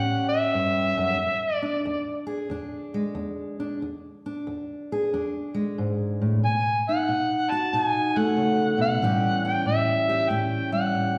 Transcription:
Already playing: A2 G3 C#4 G4 F#5
0.29 E5
0.54 G2
0.97 F#2
1.17 E2
1.55 D5
1.62 D4
1.85 E2
2.27 G#4
2.50 E2 D4
2.94 G#3
3.15 E2
3.60 D4
3.82 E2
4.26 D4
4.47 E2
4.92 G#4
5.13 E2 D4
5.54 G#3
5.78 G#2
6.22 A2
6.44 B2 G#5
6.89 D#4 F#5
7.09 B2
7.51 F#4 A5
7.73 B2 D#4 A5
7.85 G#5
8.16 A3 F#5
8.37 C#3
8.78 B2 F#5
9.02 A2 E3 G3 C#4 G4
9.45 C#4 G5
9.66 A2 E5
10.09 G4
10.29 A2 C#4 G5
10.72 G3 F#5
10.95 A2

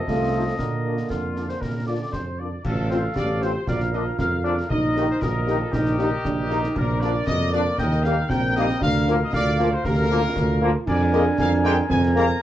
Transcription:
Already playing: A4 D#5
0.07 C2 F3 A3, concert bass drum, snare
0.33 A3 D#4 F4 C5
0.47 A3
0.58 A#2 D3 A#3 A#4, concert bass drum, snare
0.85 A#3 D4 F4 D5
0.97 snare
1.10 F2 F4, concert bass drum, snare
1.36 A#3 D4 F4 D5, snare
1.49 C5, snare
1.61 A#2 A#4, concert bass drum, snare
1.86 A#3 D4 F4 D5
2.13 F2 C5, concert bass drum, snare
2.39 A#3 D4 F4 D5
2.64 A1 F4 A4 F5, concert bass drum, crash
2.90 F3 C4 F4 C5, snare
3.16 A1 G4 D5, concert bass drum, snare
3.42 F3 C4 F4 C5, snare
3.66 A#1 F4 A#4 D5 F5, concert bass drum, snare
3.80 snare
3.93 F3 A#3 D4 F4 D#5, snare
4.19 F2 A#4 F5, concert bass drum, snare
4.44 F3 A#3 D4 F4 D5, snare
4.58 snare
4.70 A#1 D#4 A#4 D#5, concert bass drum
4.96 D#3 A#3 D#4 G4, snare
5.10 C5
5.20 A#1 F4 A#4 D#5, concert bass drum, snare
5.47 D#3 A#3 D#4 G4, snare
5.60 A4
5.72 A#1 D#4 G4 A#4 D#5, concert bass drum, snare
5.86 snare
5.99 D#3 A#3 D4 D#4 G4, snare
6.25 A#1 D4, concert bass drum, snare
6.50 D#3 A#3 D#4 G4, snare
6.63 snare
6.76 A#1 D4 A#4 D5, concert bass drum, crash
7.00 F3 A#3 D4 F4 D5, snare
7.27 F2 A#3 D#5, concert bass drum, snare
7.52 F3 A#3 D4 F4 D5, snare
7.77 D#2 A#4 D#5 G5, concert bass drum, snare
7.91 snare
8.04 G3 A#3 D#4 G4 F5, snare
8.29 A#1 C4 A#4 G5, concert bass drum, snare
8.55 G3 A#3 D#4 G4 D#5, snare
8.69 snare
8.81 D2 D4 A#4 F5, concert bass drum
9.07 F3 A#3 F4 A#4, snare
9.22 D#5
9.32 D2 F4 A#4 D5 F5, concert bass drum, snare
9.58 F3 A#3 F4 A#4, snare
9.72 C5
9.84 D2 G4 A#4 F5, concert bass drum, snare
10.10 F3 A#3 F4 A#4
10.36 D2, concert bass drum, snare
10.61 F3 A#3 F4 A#4
10.87 F2 D4 A#4 D5 G#5, concert bass drum, crash
11.13 G#3 A#3 G#4 A#4 D#5, snare
11.39 F2 A#4 F5 G#5, concert bass drum, snare
11.64 G#3 A#3 G#4 A#4 G5, snare
11.89 F2 C4 A#4 G#5, concert bass drum, snare
12.03 snare
12.16 G#3 A#3 G#4 A#4 A#5, snare

